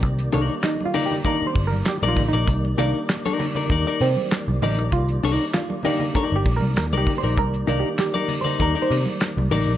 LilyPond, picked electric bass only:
\new Staff \with { instrumentName = "Picked electric bass" } { \clef bass \time 4/4 \key c \minor \tempo 4 = 98 c,8 c,16 r4. r16 g,,8 r16 bes,,16 a,,16 bes,,16 | c,8 c,16 r4 r16 ees,16 r16 c16 r8 c,16 a,,16 bes,,16 | c,8 c,16 r4. g,,16 bes,,16 c,16 ees,16 c,16 r16 bes,,16 | c,8 c,16 r4 r16 ees,16 r16 c16 r8 c,16 a,,16 bes,,16 | }